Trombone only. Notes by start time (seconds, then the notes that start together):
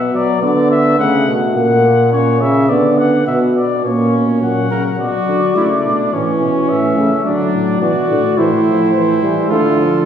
Already playing: B3
0.42 B3
0.98 A3
1.55 A#3
2.13 C#4
2.69 B3
3.27 B3
3.85 A#3
4.42 F#3
4.99 F#3
5.56 A3
6.13 E3
6.98 A3
7.26 F#3
7.82 E3
8.10 D3
8.38 E3
8.66 F3
8.94 E3
9.22 G3
9.50 A3
9.79 F3